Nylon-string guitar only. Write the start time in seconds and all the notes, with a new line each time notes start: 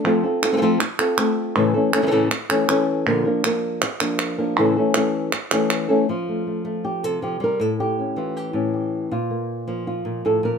0.04 F3 A3 C4 F4 A4
0.24 C4 F4 A4
0.42 C4 F4 A4
0.53 A3 C4 F4 A4
0.57 A3 C4 F4 A4
0.62 F3 A3 C4 F4 A4
0.80 muted nylon-string guitar stroke
0.99 C4 F4 A4
1.18 A3 C4 F4 A4
1.55 A2 C#3 E3 A3 C#4 A4
1.74 E3 A3 C#4 A4
1.92 E3 A3 C#4 A4
2.02 C#3 E3 A3 C#4 A4
2.07 C#3 E3 A3 C#4 A4
2.11 A2 C#3 E3 A3 C#4 A4
2.30 muted nylon-string guitar stroke
2.49 E3 A3 C#4 A4
2.68 E3 A3 C#4 A4
3.06 A#2 D3 F3 A#3 D4 A#4
3.25 F3 A#3 D4 A#4
3.44 F3 A#3 D4 A#4
3.82 muted nylon-string guitar stroke
4.00 F3 A#3 D4 A#4
4.38 F3 A#3 D4 A#4
4.57 A2 C#3 E3 A3 C#4 A4
4.77 E3 A3 C#4 A4
4.95 E3 A3 C#4 A4
5.33 muted nylon-string guitar stroke
5.51 E3 A3 C#4 A4
5.89 E3 A3 C#4 A4
6.09 F3 F4
6.29 A3
6.47 A3
6.65 A3
6.84 G4
7.04 C3 A4
7.22 F3 G4
7.40 G3 A#4
7.60 A2 A4
7.80 G4
7.99 C#4
8.16 E3 F4
8.36 G4
8.53 A2 C#4
8.74 G4
9.11 A#2 F4
9.31 A#3
9.68 F3 A#3
9.87 F4
10.05 A#2 A#3
10.25 A2 A4
10.43 A#2 A#4